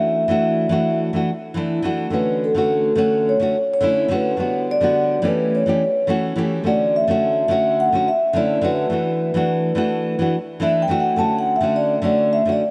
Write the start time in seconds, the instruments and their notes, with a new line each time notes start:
Already playing: nylon-string guitar E3 A3 D4 F#4, vibraphone E5
0.28 nylon-string guitar E3 A3 D4 F#4
0.69 nylon-string guitar E3 A3 D4 F#4
1.13 nylon-string guitar E3 A3 D4 F#4
1.54 nylon-string guitar E3 A3 D4 E4
1.82 nylon-string guitar E3 A3 D4 F#4
2.10 nylon-string guitar D3 A3 C#4 F#4, vibraphone B4
2.44 vibraphone A4
2.55 nylon-string guitar D3 A3 C#4 F#4
2.95 nylon-string guitar D3 A3 C#4 F#4
3.29 vibraphone C#5
3.40 nylon-string guitar D3 A3 C#4 F#4
3.74 vibraphone C#5
3.81 nylon-string guitar D3 A3 C#4 E4
4.08 nylon-string guitar D3 A3 C#4 F#4
4.14 vibraphone B4
4.37 nylon-string guitar D3 G3 B3 F#4
4.71 vibraphone D5
4.81 nylon-string guitar D3 G3 B3 F#4
5.22 nylon-string guitar E3 A3 C#4 G4
5.27 vibraphone B4
5.55 vibraphone C#5
5.66 nylon-string guitar E3 A3 C#4 G4
6.07 nylon-string guitar E3 A3 C#4 F#4
6.36 nylon-string guitar E3 A3 C#4 G4
6.63 nylon-string guitar D3 A3 C#4 F#4, vibraphone D5
6.96 vibraphone E5
7.08 nylon-string guitar D3 A3 C#4 F#4
7.48 nylon-string guitar D3 A3 C#4 F#4
7.80 vibraphone F#5
7.92 nylon-string guitar D3 A3 C#4 F#4
8.08 vibraphone E5
8.33 nylon-string guitar D3 A3 C#4 E4, vibraphone D5
8.61 nylon-string guitar D3 A3 C#4 F#4, vibraphone B4
8.90 nylon-string guitar E3 A3 D4 F#4
9.34 nylon-string guitar E3 A3 D4 F#4
9.75 nylon-string guitar E3 A3 D4 F#4
10.19 nylon-string guitar E3 A3 D4 F#4
10.60 nylon-string guitar E3 A3 D4 E4, vibraphone E5
10.82 vibraphone G5
10.88 nylon-string guitar E3 A3 D4 F#4
11.00 vibraphone F#5
11.16 nylon-string guitar D3 A3 C#4 F#4, vibraphone A5
11.39 vibraphone F#5
11.56 vibraphone E5
11.61 nylon-string guitar D3 A3 C#4 F#4
11.76 vibraphone D5
12.02 nylon-string guitar D3 A3 C#4 F#4, vibraphone D5
12.33 vibraphone E5
12.45 nylon-string guitar D3 A3 C#4 F#4
12.52 vibraphone D5